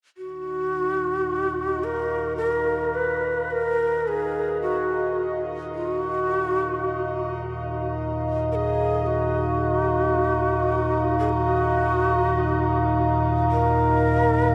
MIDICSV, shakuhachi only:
0, 0, Header, 1, 2, 480
1, 0, Start_track
1, 0, Key_signature, -6, "minor"
1, 0, Tempo, 1111111
1, 76, Time_signature, 4, 2, 24, 8
1, 6285, End_track
2, 0, Start_track
2, 0, Title_t, "Shakuhachi"
2, 0, Program_c, 0, 77
2, 75, Note_on_c, 0, 66, 85
2, 793, Note_on_c, 0, 70, 78
2, 799, Note_off_c, 0, 66, 0
2, 1021, Note_off_c, 0, 70, 0
2, 1024, Note_on_c, 0, 70, 89
2, 1271, Note_on_c, 0, 71, 83
2, 1277, Note_off_c, 0, 70, 0
2, 1515, Note_on_c, 0, 70, 87
2, 1521, Note_off_c, 0, 71, 0
2, 1760, Note_on_c, 0, 68, 82
2, 1767, Note_off_c, 0, 70, 0
2, 1993, Note_off_c, 0, 68, 0
2, 1996, Note_on_c, 0, 66, 78
2, 2342, Note_off_c, 0, 66, 0
2, 2483, Note_on_c, 0, 65, 81
2, 2561, Note_off_c, 0, 65, 0
2, 2561, Note_on_c, 0, 66, 81
2, 3182, Note_off_c, 0, 66, 0
2, 3680, Note_on_c, 0, 70, 66
2, 3694, Note_on_c, 0, 68, 72
2, 3698, Note_off_c, 0, 70, 0
2, 3916, Note_on_c, 0, 66, 82
2, 3923, Note_off_c, 0, 68, 0
2, 4831, Note_off_c, 0, 66, 0
2, 4834, Note_on_c, 0, 68, 59
2, 4879, Note_off_c, 0, 68, 0
2, 4879, Note_on_c, 0, 68, 81
2, 4893, Note_on_c, 0, 66, 88
2, 4897, Note_off_c, 0, 68, 0
2, 5721, Note_off_c, 0, 66, 0
2, 5836, Note_on_c, 0, 70, 99
2, 6285, Note_off_c, 0, 70, 0
2, 6285, End_track
0, 0, End_of_file